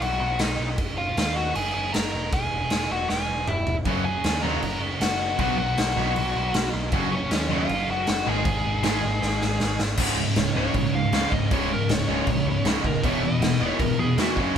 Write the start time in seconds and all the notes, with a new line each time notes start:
0.01 B1 F#4 F#5, crash
0.20 B1
0.39 B1 D#4 D#5, snare, crash
0.59 B1
0.78 F#1, kick, crash
0.98 F4 F5
1.17 D#2, snare, crash
1.36 F#4 F#5
1.55 F#1 G#4 G#5, crash
1.74 F#1 G#4 G#5
1.92 F#1 A#4 A#5, snare, crash
2.12 E1 A#4 A#5
2.33 E1 G#4 G#5, kick, crash
2.54 E1
2.70 E1, snare, crash
2.90 E1 F#4 F#5
3.09 E1 G#4 G#5, snare
3.30 E1
3.48 E1 E4 E5, mid tom
3.67 E1, floor tom
3.85 F#1 F#2 C#3 F#3 A#3 C#4, kick, crash
3.89 F#4
4.05 G#4 G#5
4.24 D#2, snare, crash
4.42 F#2 C#3 F#3 A#4 A#5
4.62 F#1, crash
4.80 F#1
5.00 F#1 F#4 F#5, snare, crash
5.38 B1 B2 F#3 B3 D#4 F#4 B4 F#5, kick, crash
5.57 B1 F#4 F#5
5.77 B1, snare, crash
5.96 B1 B2 F#3 B3
6.16 B1, crash
6.36 B1
6.54 B1, snare, crash
6.73 B1
6.92 F#1 F#2 C#3 F#3 A#3 C#4 F#4, kick, crash
7.12 C#4 C#5
7.31 D#2, snare, crash
7.51 F#2 C#3 F#3 F4 F5
7.69 F#1, crash
7.89 F#1 F#4 F#5
8.07 F#1 F#4 F#5, snare, crash
8.25 G#1 G#2 D#3 G#3 C4 D#4 G#4 G#5
8.45 G#1, kick, crash
8.66 G#1
8.83 G#1 G#2 D#3 G#3, snare, crash
9.04 G#1
9.22 G#1, snare
9.42 G#1, snare
9.60 G#1, snare
9.79 G#1, snare
9.97 C#1 C#2 G#2 C#3 G#3, kick, crash
10.02 F4
10.17 C#2 G#2
10.36 C#1 C#2 G#2 C#5, snare, crash
10.55 C#1 C#2 G#2 C#3 C#5
10.74 A#1 C#2 G#2, kick, crash
10.93 C#2 G#2 F5
11.12 C#2 G#2 C#3, snare, crash
11.31 C#1 C#2 G#2 C#3 G#3 F4 D#5, kick
11.36 C#2
11.51 C#1 C#2 G#2 C#3 G#3 F4 C#5, kick, crash
11.71 C#2 G#2 A#4
11.89 C#1 C#2 G#2 C#5, snare, crash
12.07 C#1 C#2 G#2 C#3
12.27 A#1 C#2 G#2, kick, crash
12.45 C#2 G#2
12.64 C#2 G#2 C#3, snare, crash
12.84 D#1 C#2 G#2 C#3 G#3 F4 A#4, kick
12.88 C#2
13.03 E1 E2 B2 E3 G#3 B3 E4 C#5, kick, crash
13.21 E2 B2 D#5
13.41 E1 E2 B2, snare, crash
13.60 E1 E2 B2 E3
13.80 C#1 E2 B2 A#4, kick, crash
13.98 E2 B2 G#4
14.18 E2 B2 E3 F#4, snare, crash
14.36 F#1 F#2 C#3 F#3 A#3 C#4 F#4, kick